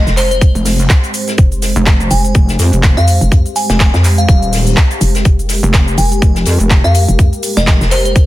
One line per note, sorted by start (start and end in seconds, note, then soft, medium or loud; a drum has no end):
0.00 8.26 G#3 medium
0.00 8.26 G4 medium
0.00 5.24 C5 medium
0.07 0.53 F1 loud
0.07 snare medium
0.07 closed hi-hat soft
0.07 shaker soft
0.17 0.26 C5 medium
0.17 clap soft
0.17 closed hi-hat medium
0.17 open hi-hat loud
0.17 shaker medium
0.31 0.38 C5 medium
0.31 closed hi-hat soft
0.31 shaker soft
0.41 kick loud
0.41 closed hi-hat medium
0.41 shaker soft
0.55 0.88 F1 loud
0.55 closed hi-hat soft
0.55 shaker soft
0.65 snare medium
0.65 open hi-hat medium
0.65 open hi-hat loud
0.65 shaker medium
0.79 closed hi-hat medium
0.79 shaker soft
0.90 kick loud
0.90 snare loud
0.90 clap loud
0.90 closed hi-hat medium
0.90 shaker soft
1.04 closed hi-hat soft
1.04 shaker soft
1.14 closed hi-hat medium
1.14 open hi-hat loud
1.14 shaker medium
1.28 snare soft
1.28 closed hi-hat medium
1.28 shaker soft
1.38 1.74 F1 loud
1.38 kick loud
1.38 closed hi-hat medium
1.38 shaker soft
1.52 closed hi-hat soft
1.52 shaker soft
1.62 snare medium
1.62 closed hi-hat medium
1.62 open hi-hat loud
1.62 shaker medium
1.76 2.09 F1 loud
1.76 closed hi-hat medium
1.76 shaker soft
1.86 kick loud
1.86 snare loud
1.86 clap loud
1.86 closed hi-hat medium
1.86 shaker soft
2.00 closed hi-hat soft
2.00 shaker soft
2.11 2.33 F1 loud
2.11 2.26 G#5 medium
2.11 closed hi-hat medium
2.11 open hi-hat loud
2.11 shaker medium
2.25 closed hi-hat soft
2.25 shaker soft
2.35 2.57 F1 loud
2.35 kick loud
2.35 closed hi-hat medium
2.35 shaker soft
2.49 snare soft
2.49 closed hi-hat soft
2.49 shaker soft
2.59 2.71 F2 medium
2.59 snare soft
2.59 closed hi-hat medium
2.59 open hi-hat loud
2.59 shaker medium
2.73 2.95 F1 loud
2.73 closed hi-hat medium
2.73 shaker soft
2.83 kick loud
2.83 snare loud
2.83 clap loud
2.83 closed hi-hat medium
2.83 shaker soft
2.97 3.19 F2 loud
2.97 3.09 F5 loud
2.97 closed hi-hat soft
2.97 shaker soft
3.08 closed hi-hat medium
3.08 open hi-hat loud
3.08 shaker medium
3.21 3.30 F1 loud
3.21 closed hi-hat medium
3.21 shaker soft
3.32 3.43 F2 loud
3.32 kick loud
3.32 closed hi-hat medium
3.32 shaker soft
3.46 closed hi-hat soft
3.46 shaker soft
3.56 3.65 G#5 medium
3.56 closed hi-hat medium
3.56 open hi-hat loud
3.56 shaker medium
3.69 3.92 F1 loud
3.69 3.76 G#5 medium
3.69 snare medium
3.69 closed hi-hat medium
3.69 shaker soft
3.80 kick loud
3.80 snare loud
3.80 clap loud
3.80 closed hi-hat medium
3.80 shaker soft
3.94 4.27 F2 loud
3.94 snare medium
3.94 closed hi-hat soft
3.94 shaker soft
4.04 clap soft
4.04 closed hi-hat medium
4.04 open hi-hat loud
4.04 shaker medium
4.18 4.25 F5 medium
4.18 closed hi-hat soft
4.18 shaker soft
4.29 4.75 D#1 loud
4.29 4.37 F5 medium
4.29 kick loud
4.29 closed hi-hat medium
4.29 shaker soft
4.42 closed hi-hat soft
4.42 shaker soft
4.53 snare medium
4.53 open hi-hat loud
4.53 open hi-hat medium
4.53 shaker medium
4.67 closed hi-hat medium
4.67 shaker soft
4.77 kick loud
4.77 snare loud
4.77 clap loud
4.77 closed hi-hat medium
4.77 shaker soft
4.91 closed hi-hat soft
4.91 shaker soft
5.01 5.24 F1 loud
5.01 closed hi-hat medium
5.01 open hi-hat loud
5.01 shaker medium
5.15 snare soft
5.15 closed hi-hat medium
5.15 shaker soft
5.25 5.61 F1 medium
5.25 8.26 A#4 medium
5.25 kick loud
5.25 closed hi-hat medium
5.25 shaker soft
5.39 closed hi-hat soft
5.39 shaker soft
5.49 snare medium
5.49 closed hi-hat medium
5.49 open hi-hat loud
5.49 shaker medium
5.63 5.96 F1 loud
5.63 closed hi-hat medium
5.63 shaker soft
5.74 kick loud
5.74 snare loud
5.74 clap loud
5.74 closed hi-hat loud
5.74 closed hi-hat medium
5.74 shaker soft
5.88 closed hi-hat soft
5.88 shaker soft
5.97 6.20 F1 loud
5.97 6.13 G#5 medium
5.97 closed hi-hat medium
5.97 open hi-hat loud
5.97 shaker medium
6.12 closed hi-hat soft
6.12 shaker soft
6.22 6.45 F1 loud
6.22 kick loud
6.22 closed hi-hat loud
6.22 closed hi-hat medium
6.22 shaker soft
6.35 snare soft
6.35 closed hi-hat soft
6.35 shaker soft
6.45 6.58 F2 loud
6.45 snare soft
6.45 closed hi-hat medium
6.45 open hi-hat loud
6.45 shaker medium
6.60 6.82 F1 loud
6.60 closed hi-hat medium
6.60 shaker soft
6.70 kick loud
6.70 snare loud
6.70 clap loud
6.70 closed hi-hat medium
6.70 shaker soft
6.84 7.06 F2 loud
6.84 6.96 F5 medium
6.84 closed hi-hat soft
6.84 shaker soft
6.94 closed hi-hat medium
6.94 open hi-hat medium
6.94 shaker medium
7.08 7.17 F1 medium
7.08 closed hi-hat medium
7.08 shaker soft
7.19 7.30 F2 medium
7.19 kick loud
7.19 closed hi-hat medium
7.19 shaker soft
7.33 closed hi-hat soft
7.33 shaker soft
7.43 closed hi-hat medium
7.43 open hi-hat loud
7.43 shaker medium
7.57 7.79 F1 loud
7.57 7.69 D#5 medium
7.57 snare medium
7.57 closed hi-hat medium
7.57 shaker soft
7.67 kick loud
7.67 snare loud
7.67 clap loud
7.67 closed hi-hat medium
7.67 shaker soft
7.81 8.26 F1 loud
7.81 snare medium
7.81 closed hi-hat soft
7.81 shaker soft
7.91 8.00 C5 medium
7.91 clap soft
7.91 closed hi-hat medium
7.91 open hi-hat medium
7.91 shaker medium
8.05 8.12 C5 medium
8.05 closed hi-hat medium
8.05 shaker soft
8.16 kick loud
8.16 closed hi-hat medium
8.16 shaker soft